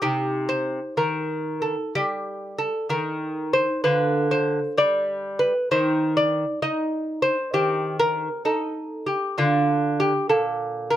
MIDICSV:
0, 0, Header, 1, 2, 480
1, 0, Start_track
1, 0, Key_signature, -2, "minor"
1, 0, Tempo, 956938
1, 11, Time_signature, 4, 2, 24, 8
1, 1931, Tempo, 918836
1, 3850, Key_signature, -2, "major"
1, 5649, End_track
2, 0, Start_track
2, 0, Title_t, "Lute"
2, 0, Program_c, 0, 24
2, 9, Note_on_c, 0, 48, 69
2, 9, Note_on_c, 0, 63, 43
2, 12, Note_on_c, 0, 67, 86
2, 244, Note_off_c, 0, 67, 0
2, 244, Note_on_c, 0, 72, 91
2, 396, Note_off_c, 0, 48, 0
2, 479, Note_off_c, 0, 72, 0
2, 487, Note_on_c, 0, 51, 61
2, 488, Note_on_c, 0, 70, 82
2, 797, Note_off_c, 0, 70, 0
2, 811, Note_on_c, 0, 69, 79
2, 875, Note_off_c, 0, 51, 0
2, 967, Note_off_c, 0, 69, 0
2, 980, Note_on_c, 0, 55, 71
2, 980, Note_on_c, 0, 67, 92
2, 1286, Note_off_c, 0, 67, 0
2, 1296, Note_on_c, 0, 69, 88
2, 1363, Note_off_c, 0, 55, 0
2, 1450, Note_off_c, 0, 69, 0
2, 1452, Note_on_c, 0, 51, 59
2, 1455, Note_on_c, 0, 70, 87
2, 1761, Note_off_c, 0, 70, 0
2, 1772, Note_on_c, 0, 72, 96
2, 1834, Note_off_c, 0, 51, 0
2, 1910, Note_off_c, 0, 63, 0
2, 1923, Note_off_c, 0, 72, 0
2, 1925, Note_on_c, 0, 71, 89
2, 1927, Note_on_c, 0, 50, 76
2, 1929, Note_on_c, 0, 65, 49
2, 2160, Note_off_c, 0, 71, 0
2, 2172, Note_on_c, 0, 72, 100
2, 2316, Note_off_c, 0, 50, 0
2, 2404, Note_off_c, 0, 72, 0
2, 2415, Note_on_c, 0, 55, 73
2, 2418, Note_on_c, 0, 74, 100
2, 2728, Note_off_c, 0, 74, 0
2, 2737, Note_on_c, 0, 71, 94
2, 2803, Note_off_c, 0, 55, 0
2, 2877, Note_off_c, 0, 65, 0
2, 2893, Note_off_c, 0, 71, 0
2, 2904, Note_on_c, 0, 51, 75
2, 2905, Note_on_c, 0, 63, 49
2, 2905, Note_on_c, 0, 72, 95
2, 3131, Note_off_c, 0, 72, 0
2, 3142, Note_on_c, 0, 74, 96
2, 3282, Note_off_c, 0, 51, 0
2, 3366, Note_off_c, 0, 74, 0
2, 3374, Note_off_c, 0, 63, 0
2, 3380, Note_on_c, 0, 63, 66
2, 3380, Note_on_c, 0, 75, 97
2, 3680, Note_off_c, 0, 75, 0
2, 3693, Note_on_c, 0, 72, 94
2, 3759, Note_off_c, 0, 63, 0
2, 3846, Note_off_c, 0, 72, 0
2, 3857, Note_on_c, 0, 51, 68
2, 3857, Note_on_c, 0, 60, 49
2, 3858, Note_on_c, 0, 67, 85
2, 4088, Note_off_c, 0, 67, 0
2, 4096, Note_on_c, 0, 70, 98
2, 4242, Note_off_c, 0, 51, 0
2, 4327, Note_off_c, 0, 70, 0
2, 4334, Note_on_c, 0, 63, 67
2, 4336, Note_on_c, 0, 69, 78
2, 4641, Note_off_c, 0, 69, 0
2, 4655, Note_on_c, 0, 67, 86
2, 4718, Note_off_c, 0, 63, 0
2, 4795, Note_off_c, 0, 60, 0
2, 4808, Note_off_c, 0, 67, 0
2, 4818, Note_on_c, 0, 62, 49
2, 4820, Note_on_c, 0, 65, 83
2, 4824, Note_on_c, 0, 50, 68
2, 5127, Note_off_c, 0, 65, 0
2, 5143, Note_on_c, 0, 67, 95
2, 5206, Note_off_c, 0, 50, 0
2, 5294, Note_off_c, 0, 67, 0
2, 5298, Note_on_c, 0, 69, 78
2, 5301, Note_on_c, 0, 46, 63
2, 5601, Note_off_c, 0, 69, 0
2, 5616, Note_on_c, 0, 70, 94
2, 5649, Note_off_c, 0, 46, 0
2, 5649, Note_off_c, 0, 62, 0
2, 5649, Note_off_c, 0, 70, 0
2, 5649, End_track
0, 0, End_of_file